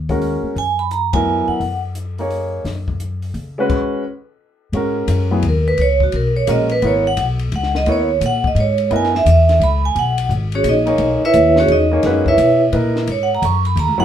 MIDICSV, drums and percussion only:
0, 0, Header, 1, 2, 480
1, 0, Start_track
1, 0, Key_signature, 5, "minor"
1, 0, Tempo, 347423
1, 779, Time_signature, 3, 2, 24, 8
1, 19410, End_track
2, 0, Start_track
2, 0, Title_t, "Drums"
2, 127, Note_on_c, 9, 36, 50
2, 129, Note_on_c, 9, 46, 31
2, 265, Note_off_c, 9, 36, 0
2, 267, Note_off_c, 9, 46, 0
2, 299, Note_on_c, 9, 46, 37
2, 438, Note_off_c, 9, 46, 0
2, 780, Note_on_c, 9, 46, 34
2, 918, Note_off_c, 9, 46, 0
2, 1255, Note_on_c, 9, 42, 45
2, 1394, Note_off_c, 9, 42, 0
2, 1566, Note_on_c, 9, 51, 60
2, 1567, Note_on_c, 9, 36, 65
2, 1704, Note_off_c, 9, 51, 0
2, 1705, Note_off_c, 9, 36, 0
2, 2222, Note_on_c, 9, 46, 36
2, 2360, Note_off_c, 9, 46, 0
2, 2697, Note_on_c, 9, 42, 50
2, 2835, Note_off_c, 9, 42, 0
2, 3018, Note_on_c, 9, 46, 32
2, 3156, Note_off_c, 9, 46, 0
2, 3184, Note_on_c, 9, 46, 37
2, 3322, Note_off_c, 9, 46, 0
2, 3665, Note_on_c, 9, 46, 39
2, 3669, Note_on_c, 9, 38, 34
2, 3803, Note_off_c, 9, 46, 0
2, 3807, Note_off_c, 9, 38, 0
2, 3976, Note_on_c, 9, 36, 44
2, 4114, Note_off_c, 9, 36, 0
2, 4145, Note_on_c, 9, 42, 46
2, 4283, Note_off_c, 9, 42, 0
2, 4454, Note_on_c, 9, 46, 33
2, 4592, Note_off_c, 9, 46, 0
2, 4620, Note_on_c, 9, 46, 39
2, 4758, Note_off_c, 9, 46, 0
2, 5105, Note_on_c, 9, 49, 58
2, 5107, Note_on_c, 9, 36, 66
2, 5243, Note_off_c, 9, 49, 0
2, 5246, Note_off_c, 9, 36, 0
2, 6538, Note_on_c, 9, 51, 47
2, 6676, Note_off_c, 9, 51, 0
2, 7014, Note_on_c, 9, 44, 59
2, 7014, Note_on_c, 9, 51, 67
2, 7152, Note_off_c, 9, 44, 0
2, 7152, Note_off_c, 9, 51, 0
2, 7496, Note_on_c, 9, 51, 57
2, 7634, Note_off_c, 9, 51, 0
2, 7980, Note_on_c, 9, 51, 53
2, 8118, Note_off_c, 9, 51, 0
2, 8295, Note_on_c, 9, 36, 48
2, 8433, Note_off_c, 9, 36, 0
2, 8457, Note_on_c, 9, 51, 55
2, 8596, Note_off_c, 9, 51, 0
2, 8941, Note_on_c, 9, 44, 60
2, 8941, Note_on_c, 9, 51, 69
2, 9080, Note_off_c, 9, 44, 0
2, 9080, Note_off_c, 9, 51, 0
2, 9249, Note_on_c, 9, 51, 46
2, 9387, Note_off_c, 9, 51, 0
2, 9424, Note_on_c, 9, 51, 53
2, 9562, Note_off_c, 9, 51, 0
2, 9904, Note_on_c, 9, 44, 54
2, 9904, Note_on_c, 9, 51, 70
2, 10042, Note_off_c, 9, 44, 0
2, 10042, Note_off_c, 9, 51, 0
2, 10214, Note_on_c, 9, 51, 44
2, 10352, Note_off_c, 9, 51, 0
2, 10387, Note_on_c, 9, 51, 58
2, 10525, Note_off_c, 9, 51, 0
2, 10546, Note_on_c, 9, 38, 30
2, 10684, Note_off_c, 9, 38, 0
2, 10707, Note_on_c, 9, 38, 42
2, 10845, Note_off_c, 9, 38, 0
2, 10860, Note_on_c, 9, 51, 57
2, 10999, Note_off_c, 9, 51, 0
2, 11346, Note_on_c, 9, 44, 57
2, 11346, Note_on_c, 9, 51, 63
2, 11484, Note_off_c, 9, 44, 0
2, 11484, Note_off_c, 9, 51, 0
2, 11663, Note_on_c, 9, 36, 57
2, 11801, Note_off_c, 9, 36, 0
2, 11829, Note_on_c, 9, 51, 56
2, 11967, Note_off_c, 9, 51, 0
2, 12129, Note_on_c, 9, 51, 43
2, 12267, Note_off_c, 9, 51, 0
2, 12306, Note_on_c, 9, 51, 50
2, 12444, Note_off_c, 9, 51, 0
2, 12486, Note_on_c, 9, 38, 30
2, 12624, Note_off_c, 9, 38, 0
2, 12644, Note_on_c, 9, 38, 39
2, 12782, Note_off_c, 9, 38, 0
2, 12797, Note_on_c, 9, 44, 63
2, 12797, Note_on_c, 9, 51, 73
2, 12935, Note_off_c, 9, 44, 0
2, 12935, Note_off_c, 9, 51, 0
2, 13111, Note_on_c, 9, 51, 48
2, 13115, Note_on_c, 9, 38, 33
2, 13249, Note_off_c, 9, 51, 0
2, 13253, Note_off_c, 9, 38, 0
2, 13283, Note_on_c, 9, 51, 56
2, 13421, Note_off_c, 9, 51, 0
2, 13756, Note_on_c, 9, 51, 56
2, 13894, Note_off_c, 9, 51, 0
2, 14062, Note_on_c, 9, 51, 70
2, 14200, Note_off_c, 9, 51, 0
2, 14232, Note_on_c, 9, 44, 51
2, 14370, Note_off_c, 9, 44, 0
2, 14534, Note_on_c, 9, 51, 45
2, 14672, Note_off_c, 9, 51, 0
2, 14701, Note_on_c, 9, 44, 66
2, 14701, Note_on_c, 9, 51, 68
2, 14839, Note_off_c, 9, 44, 0
2, 14839, Note_off_c, 9, 51, 0
2, 15012, Note_on_c, 9, 51, 47
2, 15150, Note_off_c, 9, 51, 0
2, 15171, Note_on_c, 9, 51, 58
2, 15309, Note_off_c, 9, 51, 0
2, 15660, Note_on_c, 9, 44, 70
2, 15660, Note_on_c, 9, 51, 65
2, 15798, Note_off_c, 9, 44, 0
2, 15798, Note_off_c, 9, 51, 0
2, 15975, Note_on_c, 9, 38, 59
2, 16114, Note_off_c, 9, 38, 0
2, 16141, Note_on_c, 9, 51, 54
2, 16279, Note_off_c, 9, 51, 0
2, 16618, Note_on_c, 9, 51, 61
2, 16622, Note_on_c, 9, 38, 36
2, 16756, Note_off_c, 9, 51, 0
2, 16760, Note_off_c, 9, 38, 0
2, 16936, Note_on_c, 9, 36, 58
2, 17075, Note_off_c, 9, 36, 0
2, 17103, Note_on_c, 9, 44, 55
2, 17103, Note_on_c, 9, 51, 72
2, 17241, Note_off_c, 9, 44, 0
2, 17241, Note_off_c, 9, 51, 0
2, 17582, Note_on_c, 9, 51, 58
2, 17720, Note_off_c, 9, 51, 0
2, 17905, Note_on_c, 9, 38, 43
2, 18043, Note_off_c, 9, 38, 0
2, 18063, Note_on_c, 9, 51, 64
2, 18201, Note_off_c, 9, 51, 0
2, 18548, Note_on_c, 9, 44, 57
2, 18548, Note_on_c, 9, 51, 66
2, 18686, Note_off_c, 9, 44, 0
2, 18686, Note_off_c, 9, 51, 0
2, 18858, Note_on_c, 9, 51, 41
2, 18996, Note_off_c, 9, 51, 0
2, 19025, Note_on_c, 9, 51, 64
2, 19164, Note_off_c, 9, 51, 0
2, 19410, End_track
0, 0, End_of_file